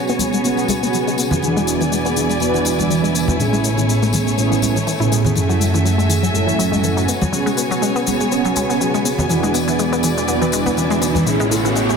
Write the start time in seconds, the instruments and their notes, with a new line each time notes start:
Already playing: analog polysynth B3 C#4 F#4 G#4, violin section B3 F#4 C#5 G#5
0.08 synth arpeggio sound B3, tambourine, cabasa
0.19 synth arpeggio sound F#3, tambourine, high conga, cabasa
0.33 synth arpeggio sound G#3, tambourine, cabasa
0.43 analog polysynth B3 C#4 F#4 G#4, synth arpeggio sound B3, tambourine, cabasa
0.57 synth arpeggio sound F#3, tambourine, cabasa
0.68 synth arpeggio sound G#3, tambourine, high conga, cabasa
0.83 synth arpeggio sound B3, tambourine, cabasa
0.93 synth arpeggio sound F#3, tambourine, cabasa
1.07 synth arpeggio sound G#3, tambourine, cabasa
1.18 synth arpeggio sound B3, tambourine, cabasa
1.31 synth arpeggio sound F#3, tambourine, low conga, cabasa
1.41 analog polysynth E3 B3 D4 F#4 G#4, synth arpeggio sound E3, violin section E4 D5, tambourine, cabasa
1.56 synth arpeggio sound G#3, tambourine, cabasa
1.67 synth arpeggio sound B3, tambourine, cabasa
1.80 synth arpeggio sound E3, tambourine, cabasa
1.92 synth arpeggio sound G#3, tambourine, cabasa
2.05 synth arpeggio sound B3, tambourine, cabasa
2.16 synth arpeggio sound E3, tambourine, cabasa
2.29 synth arpeggio sound G#3, tambourine, cabasa
2.39 analog polysynth E3 B3 D4 F#4 B4, synth arpeggio sound B3, tambourine, cabasa
2.54 synth arpeggio sound E3, tambourine, cabasa
2.65 synth arpeggio sound G#3, tambourine, cabasa
2.79 synth arpeggio sound B3, tambourine, high conga, cabasa
2.90 synth arpeggio sound E3, tambourine, cabasa
3.03 synth arpeggio sound G#3, tambourine, cabasa
3.15 synth arpeggio sound B3, tambourine, cabasa
3.28 synth arpeggio sound E3, tambourine, high conga, low conga, cabasa
3.38 analog polysynth A2 B3 C#4 E4 G#4, synth arpeggio sound E3, violin section A3 C#5, tambourine, cabasa
3.53 synth arpeggio sound G#3, tambourine, cabasa
3.64 synth arpeggio sound A3, tambourine, cabasa
3.77 synth arpeggio sound E3, tambourine, cabasa
3.89 synth arpeggio sound G#3, tambourine, cabasa
4.02 synth arpeggio sound A3, tambourine, cabasa
4.13 synth arpeggio sound E3, tambourine, high conga, cabasa
4.27 synth arpeggio sound G#3, tambourine, cabasa
4.37 analog polysynth A2 B3 C#4 E4 G#4, synth arpeggio sound A3, tambourine, cabasa
4.51 synth arpeggio sound E3, tambourine, cabasa
4.61 analog polysynth A2 B3 C#4 E4 G#4, synth arpeggio sound A3, tambourine, high conga, cabasa
4.76 synth arpeggio sound E3, tambourine, cabasa
4.87 synth arpeggio sound E3, tambourine, cabasa
4.99 analog polysynth A2 B3 C#4 E4 G#4, synth arpeggio sound E4, tambourine, cabasa
5.12 synth arpeggio sound G#3, tambourine, cabasa
5.24 synth arpeggio sound E3, tambourine, low conga, cabasa
5.34 analog polysynth F#2 A3 C#4 E4 G#4, synth arpeggio sound E3, violin section F#4 E5 G#5, tambourine, cabasa
5.49 synth arpeggio sound F#3, tambourine, cabasa
5.61 synth arpeggio sound G#3, tambourine, cabasa
5.74 synth arpeggio sound E3, tambourine, cabasa
5.85 synth arpeggio sound F#3, tambourine, cabasa
5.98 synth arpeggio sound G#3, tambourine, cabasa
6.09 synth arpeggio sound E3, tambourine, cabasa
6.23 synth arpeggio sound F#3, tambourine, cabasa
6.33 analog polysynth F#2 A3 C#4 E4 A4, synth arpeggio sound G#3, tambourine, cabasa
6.47 synth arpeggio sound E3, tambourine, cabasa
6.59 synth arpeggio sound F#3, tambourine, cabasa
6.72 synth arpeggio sound G#3, tambourine, high conga, cabasa
6.84 synth arpeggio sound E3, tambourine, cabasa
6.97 synth arpeggio sound F#3, tambourine, cabasa
7.08 synth arpeggio sound B3, violin section B3 C#5, tambourine, cabasa
7.21 synth arpeggio sound F#3, tambourine, high conga, low conga, cabasa
7.32 synth arpeggio sound F#3, analog polysynth B3 C#4 F#4 G#4, tambourine, cabasa
7.46 synth arpeggio sound G#3, tambourine, cabasa
7.57 synth arpeggio sound B3, tambourine, cabasa
7.70 synth arpeggio sound F#3, tambourine, cabasa
7.82 synth arpeggio sound G#3, tambourine, cabasa
7.96 synth arpeggio sound B3, tambourine, cabasa
8.07 synth arpeggio sound F#3, tambourine, high conga, cabasa
8.20 synth arpeggio sound G#3, tambourine, cabasa
8.30 analog polysynth B3 C#4 F#4 G#4, synth arpeggio sound B3, tambourine, cabasa
8.45 synth arpeggio sound F#3, tambourine, cabasa
8.56 synth arpeggio sound G#3, tambourine, high conga, cabasa
8.70 synth arpeggio sound B3, tambourine, cabasa
8.81 synth arpeggio sound F#3, tambourine, cabasa
8.94 synth arpeggio sound G#3, tambourine, cabasa
9.05 synth arpeggio sound B3, tambourine, cabasa
9.18 synth arpeggio sound F#3, tambourine, low conga, cabasa
9.28 analog polysynth E3 B3 D4 F#4 G#4, synth arpeggio sound E3, violin section E4 D5, tambourine, riser, cabasa
9.43 synth arpeggio sound G#3, tambourine, cabasa
9.54 synth arpeggio sound B3, tambourine, cabasa
9.68 synth arpeggio sound E3, tambourine, cabasa
9.79 synth arpeggio sound G#3, tambourine, cabasa
9.93 synth arpeggio sound B3, tambourine, cabasa
10.03 synth arpeggio sound E3, tambourine, cabasa
10.18 synth arpeggio sound G#3, tambourine, cabasa
10.27 analog polysynth E3 B3 D4 F#4 B4, synth arpeggio sound B3, tambourine, cabasa
10.41 synth arpeggio sound E3, tambourine, cabasa
10.52 synth arpeggio sound G#3, tambourine, cabasa
10.66 synth arpeggio sound B3, tambourine, high conga, cabasa
10.77 synth arpeggio sound E3, tambourine, cabasa
10.90 synth arpeggio sound G#3, tambourine, cabasa
11.02 synth arpeggio sound B3, tambourine, cabasa
11.15 synth arpeggio sound E3, tambourine, high conga, low conga, cabasa
11.25 analog polysynth A2 B3 C#4 E4 G#4, synth arpeggio sound E3, violin section A3 G#4 C#5, tambourine, cabasa
11.40 synth arpeggio sound G#3, tambourine, cabasa
11.51 synth arpeggio sound A3, tambourine, cabasa
11.65 synth arpeggio sound E3, tambourine, cabasa
11.75 synth arpeggio sound G#3, tambourine, cabasa
11.89 synth arpeggio sound A3, tambourine, cabasa